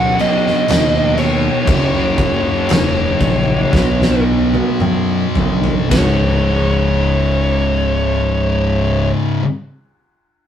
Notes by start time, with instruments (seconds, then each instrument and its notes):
Already playing: fingered electric bass F#2, distorted electric guitar B2 F#3 B3, lead electric guitar F#5
0.19 distorted electric guitar F#3 B3, lead electric guitar D#5, crash
0.23 distorted electric guitar B2
0.46 snare
0.68 fingered electric bass D#2, distorted electric guitar B2 F#3 B3, snare, crash
1.18 lead electric guitar C#5, crash
1.67 fingered electric bass F#1, distorted electric guitar F#2 C#3 F#3, kick, crash
2.18 kick, crash
2.69 fingered electric bass E1, snare, crash
3.20 fingered electric bass A#1, kick, crash
3.73 fingered electric bass B1, distorted electric guitar B2 F#3 B3, kick, snare
4.02 snare
4.53 high tom
4.80 fingered electric bass F#2, mid tom
5.35 fingered electric bass F#2, floor tom
5.64 floor tom
5.90 fingered electric bass C#1, distorted electric guitar C#2 G#2, lead electric guitar C#5, kick, snare, ride bell
5.95 distorted electric guitar C#3